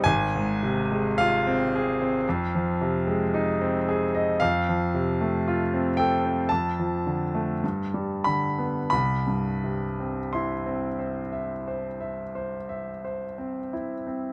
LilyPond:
\new Staff \with { instrumentName = "Grand piano" } { \time 4/4 \key f \dorian \tempo 4 = 52 << { aes''4 f''2~ f''8 r8 | \key c \major f''4. g''8 a''4. b''8 | b''4 c'''2~ c'''8 r8 | } \\ { aes,,16 aes,16 c16 aes16 f'16 c'16 aes'16 c'16 f,16 f16 c16 aes16 ees'16 c'16 aes'16 ees''16 | f,16 f16 c16 a16 f'16 c'16 a'16 c'16 f,16 f16 d16 a16 g,16 g16 d16 b16 | c,16 g,16 c16 c'16 e'16 c'16 c''16 e''16 c''16 e''16 c''16 e''16 c''16 c'16 e'16 c'16 | } >> }